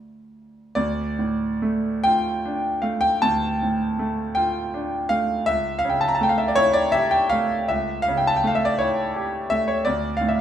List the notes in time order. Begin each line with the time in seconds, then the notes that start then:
Already playing: D2 F3 A3 D4
0.75 D2 D5
1.19 A2
1.62 A3
2.04 F4 G5
2.46 D4
2.82 A3 F5
3.01 G5
3.22 D2 A5
3.63 A2
3.99 A3
4.35 F4 G5
4.74 D4
5.09 A3 F5
5.46 C#2 E5
5.79 F5
5.85 C#3
5.89 G5
6.01 A5
6.08 A#5
6.15 A5
6.21 A3 G5
6.29 F5
6.38 E5
6.48 D5
6.55 E4 C#5
6.73 D5
6.92 G4 E5
7.11 G5
7.29 A3 F5
7.68 C#2 E5
8.02 F5
8.08 C#3
8.17 G5
8.27 A5
8.37 G5
8.44 A3 F5
8.55 E5
8.65 D5
8.79 E4 C#5
9.16 G4
9.50 A3 E5
9.68 C#5
9.85 D2 D5
10.17 F5
10.21 A2
10.29 E5